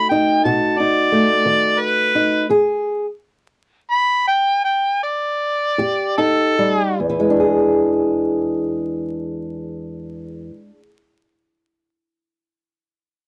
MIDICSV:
0, 0, Header, 1, 3, 480
1, 0, Start_track
1, 0, Tempo, 688073
1, 1735, Time_signature, 12, 3, 24, 8
1, 2225, Tempo, 736196
1, 3665, Tempo, 800000
1, 4625, Tempo, 832178
1, 8246, End_track
2, 0, Start_track
2, 0, Title_t, "Harmonica"
2, 0, Program_c, 0, 22
2, 63, Note_on_c, 0, 79, 100
2, 294, Note_off_c, 0, 79, 0
2, 305, Note_on_c, 0, 81, 89
2, 545, Note_on_c, 0, 74, 103
2, 555, Note_off_c, 0, 81, 0
2, 1251, Note_on_c, 0, 71, 100
2, 1261, Note_off_c, 0, 74, 0
2, 1719, Note_off_c, 0, 71, 0
2, 2694, Note_on_c, 0, 83, 102
2, 2923, Note_off_c, 0, 83, 0
2, 2932, Note_on_c, 0, 79, 113
2, 3164, Note_off_c, 0, 79, 0
2, 3174, Note_on_c, 0, 79, 97
2, 3409, Note_off_c, 0, 79, 0
2, 3426, Note_on_c, 0, 74, 101
2, 4118, Note_off_c, 0, 74, 0
2, 4131, Note_on_c, 0, 69, 101
2, 4607, Note_off_c, 0, 69, 0
2, 8246, End_track
3, 0, Start_track
3, 0, Title_t, "Steel-string acoustic guitar"
3, 0, Program_c, 1, 25
3, 0, Note_on_c, 1, 57, 63
3, 0, Note_on_c, 1, 63, 57
3, 0, Note_on_c, 1, 66, 66
3, 72, Note_off_c, 1, 63, 0
3, 79, Note_on_c, 1, 63, 66
3, 307, Note_off_c, 1, 66, 0
3, 316, Note_on_c, 1, 47, 73
3, 317, Note_on_c, 1, 66, 67
3, 547, Note_off_c, 1, 63, 0
3, 557, Note_on_c, 1, 63, 56
3, 737, Note_off_c, 1, 47, 0
3, 773, Note_off_c, 1, 57, 0
3, 781, Note_on_c, 1, 57, 55
3, 1014, Note_on_c, 1, 51, 72
3, 1445, Note_off_c, 1, 51, 0
3, 1493, Note_off_c, 1, 63, 0
3, 1501, Note_on_c, 1, 63, 64
3, 1708, Note_off_c, 1, 57, 0
3, 1710, Note_off_c, 1, 63, 0
3, 1713, Note_off_c, 1, 66, 0
3, 1741, Note_on_c, 1, 40, 74
3, 1746, Note_on_c, 1, 68, 75
3, 2128, Note_off_c, 1, 40, 0
3, 2131, Note_off_c, 1, 68, 0
3, 3896, Note_on_c, 1, 41, 80
3, 3901, Note_on_c, 1, 67, 68
3, 4134, Note_on_c, 1, 63, 65
3, 4327, Note_off_c, 1, 41, 0
3, 4378, Note_on_c, 1, 55, 67
3, 4593, Note_off_c, 1, 63, 0
3, 4596, Note_off_c, 1, 67, 0
3, 4624, Note_off_c, 1, 55, 0
3, 4624, Note_on_c, 1, 40, 57
3, 4681, Note_on_c, 1, 52, 56
3, 4740, Note_on_c, 1, 56, 53
3, 4799, Note_on_c, 1, 62, 52
3, 4856, Note_on_c, 1, 68, 54
3, 6643, Note_off_c, 1, 40, 0
3, 6700, Note_off_c, 1, 52, 0
3, 6758, Note_off_c, 1, 56, 0
3, 6818, Note_off_c, 1, 62, 0
3, 6875, Note_off_c, 1, 68, 0
3, 8246, End_track
0, 0, End_of_file